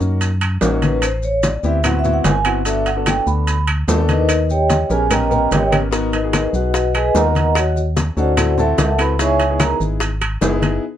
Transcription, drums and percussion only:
0.01 high conga, maracas
0.21 high conga, high timbale, maracas
0.41 high conga, high timbale, claves, maracas
0.61 high conga, low timbale, maracas
0.82 high conga, high timbale, maracas
1.02 high conga, high timbale, claves, maracas
1.23 high conga, maracas
1.43 high conga, high timbale, low timbale, maracas
1.64 high conga, maracas
1.84 high conga, low conga, high timbale, claves, maracas
2.04 high conga, low conga, maracas
2.24 high conga, high timbale, low timbale, maracas
2.45 high timbale, claves, maracas
2.65 high conga, high timbale, maracas
2.86 high conga, high timbale, maracas
3.06 high conga, high timbale, low timbale, claves, maracas
3.27 high conga, maracas
3.47 high conga, high timbale, maracas
3.67 high conga, high timbale, claves, maracas
3.88 high conga, low timbale, maracas
4.09 high conga, high timbale, maracas
4.29 high conga, high timbale, claves, maracas
4.50 high conga, maracas
4.70 high conga, high timbale, low timbale, maracas
4.90 high conga, maracas
5.11 high conga, low conga, high timbale, claves, maracas
5.31 high conga, low conga, maracas
5.52 high conga, high timbale, low timbale, maracas
5.72 high conga, high timbale, claves, maracas
5.93 high bongo, high conga, high timbale, maracas
6.13 high bongo, high conga, high timbale, maracas
6.33 high bongo, high conga, high timbale, low timbale, claves, maracas
6.54 high conga, maracas
6.74 high bongo, high conga, high timbale, maracas
6.94 high bongo, high conga, high timbale, claves, maracas
7.15 high bongo, low bongo, high conga, low timbale, maracas
7.35 high bongo, high conga, high timbale, maracas
7.55 high bongo, high conga, high timbale, claves, maracas
7.76 high bongo, high conga, maracas
7.97 high bongo, high conga, high timbale, low timbale, maracas
8.17 high conga, maracas
8.37 high bongo, high conga, low conga, high timbale, claves, maracas
8.58 high bongo, high conga, low conga, maracas
8.78 high bongo, low bongo, high conga, high timbale, low timbale, maracas
8.99 high bongo, high timbale, claves, maracas
9.19 high bongo, high conga, high timbale, maracas
9.39 high bongo, high conga, high timbale, maracas
9.60 high bongo, high conga, high timbale, low timbale, claves, maracas
9.80 high conga, maracas
10.00 high bongo, high conga, high timbale, maracas
10.21 high bongo, high conga, high timbale, claves, maracas
10.41 high bongo, low bongo, high conga, low timbale, maracas
10.62 high bongo, high conga, high timbale, maracas

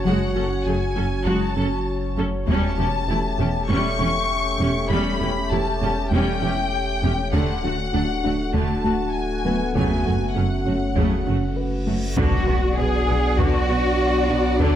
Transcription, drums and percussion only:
2.48 taiko
3.39 taiko
7.33 taiko
8.54 taiko
9.75 taiko
10.96 taiko
12.17 taiko
13.39 taiko
14.60 taiko

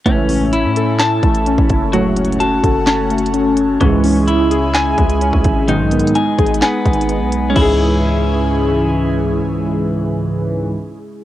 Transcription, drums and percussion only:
0.06 kick, closed hi-hat
0.29 open hi-hat
0.53 closed hi-hat
0.76 closed hi-hat
0.99 snare, clap, closed hi-hat
1.23 kick, closed hi-hat
1.35 closed hi-hat
1.46 closed hi-hat
1.58 kick
1.70 kick, closed hi-hat
1.93 closed hi-hat
2.16 closed hi-hat, open hi-hat
2.25 closed hi-hat
2.32 closed hi-hat
2.40 closed hi-hat
2.64 kick, closed hi-hat
2.87 snare, clap, closed hi-hat
3.10 closed hi-hat
3.18 closed hi-hat
3.26 closed hi-hat
3.34 closed hi-hat
3.57 closed hi-hat
3.81 kick, closed hi-hat
4.04 open hi-hat
4.28 closed hi-hat
4.51 closed hi-hat
4.75 snare, clap, closed hi-hat
4.98 kick, closed hi-hat
5.10 closed hi-hat
5.21 closed hi-hat
5.33 kick
5.44 kick, closed hi-hat
5.68 closed hi-hat
5.91 closed hi-hat, open hi-hat
6.00 closed hi-hat
6.07 closed hi-hat
6.15 closed hi-hat
6.38 kick, closed hi-hat
6.46 closed hi-hat
6.54 closed hi-hat
6.62 snare, clap, closed hi-hat
6.85 kick, closed hi-hat
6.93 closed hi-hat
7.01 closed hi-hat
7.09 closed hi-hat
7.32 closed hi-hat
7.56 kick, crash

